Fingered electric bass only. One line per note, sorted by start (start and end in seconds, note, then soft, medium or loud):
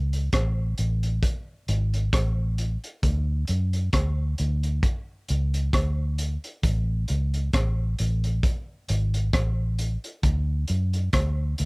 0.00 0.28 C#2 medium
0.34 0.73 A1 medium
0.79 1.18 A1 medium
1.69 2.08 G#1 medium
2.14 2.76 A1 loud
3.04 3.43 D2 loud
3.49 3.89 F#2 medium
3.94 4.34 D2 medium
4.40 4.79 D2 medium
5.30 5.69 C#2 medium
5.74 6.36 D2 medium
6.64 7.04 A1 loud
7.10 7.49 C#2 medium
7.54 7.94 A1 medium
8.00 8.39 A1 medium
8.90 9.29 G#1 medium
9.34 9.96 A1 medium
10.24 10.64 D2 loud
10.70 11.09 F#2 medium
11.14 11.53 D2 medium
11.60 11.65 D2 medium